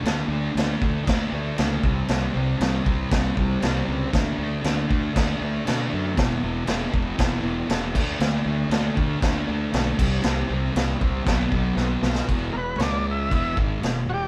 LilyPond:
<<
  \new Staff \with { instrumentName = "Transistor combo organ" } { \time 4/4 \key d \lydian \tempo 4 = 118 r1 | r1 | r1 | r1 |
r1 | r1 | r8 <ais' b'>8 <cis'' d''>8 e''8 e''8 r4 <fis' g'>8 | }
  \new Staff \with { instrumentName = "Distorted electric guitar" } { \clef bass \time 4/4 \key d \lydian <d a d'>8 <a d'>8 <d a d'>8 <a d'>8 <d a d'>8 <d a d'>8 <d a d'>8 <c g c'>8 | <c g c'>8 <g c'>8 <c g c'>8 <g c'>8 <c g c'>8 <c g c'>8 <c g c'>8 <g c'>8 | <d a d'>8 <a d'>8 <d a d'>8 <a d'>8 <d a d'>8 <d a d'>8 <d a d'>8 <a d'>8 | <e, b, e>8 <b, e>8 <e, b, e>8 <b, e>8 <e, b, e>8 <e, b, e>8 <e, b, e>8 <d a d'>8 |
<d a d'>8 <a d'>8 <d a d'>8 <a d'>8 <d a d'>8 <d a d'>8 <d a d'>8 <c g c'>8 | <c g c'>8 <g c'>8 <c g c'>8 <g c'>8 <b, fis b>8 <b, fis b>8 <b, fis b>8 <fis b>8 | <e, b, e>8 <e, b,>8 <cis gis cis'>4 <e, b, e>8 <gis, dis gis>8 <e, b,>8 <e, b,>8 | }
  \new Staff \with { instrumentName = "Fingered electric bass" } { \clef bass \time 4/4 \key d \lydian d,8 d,8 d,8 d,8 d,8 d,8 cis,8 c,8 | c,8 c,8 c,8 c,8 c,8 c,8 c,8 cis,8 | d,8 d,8 d,8 d,8 d,8 d,8 b,8 fis,8 | e,,8 e,,8 e,,8 e,,8 e,,8 e,,8 e,,8 d,8 |
d,8 d,8 d,8 d,8 d,8 d,8 b,,8 c,8 | c,8 c,8 c,8 c,8 b,,8 b,,8 b,,8 b,,8 | e,,8 e,,8 cis,4 e,,8 gis,,8 e,,8 e,,8 | }
  \new DrumStaff \with { instrumentName = "Drums" } \drummode { \time 4/4 <cymc sn>4 <cymc sn>8 bd8 <cymc bd sn>4 <cymc sn>8 bd8 | <cymc sn>4 <cymc sn>8 bd8 <cymc bd sn>8 bd8 <cymc sn>4 | <cymc bd sn>4 <cymc sn>8 bd8 <cymc bd sn>4 <cymc sn>4 | <cymc bd sn>4 <cymc sn>8 bd8 <cymc bd sn>4 <cymc sn>8 <cymc bd>8 |
<cymc sn>4 <cymc sn>8 bd8 <cymc bd sn>4 <cymc sn>8 <cymc bd>8 | <cymc sn>4 <cymc sn>8 bd8 <cymc bd sn>8 bd8 sn8 sn16 sn16 | <cymc bd>4 <cymc sn>4 <cymc bd>8 bd8 <cymc sn>4 | }
>>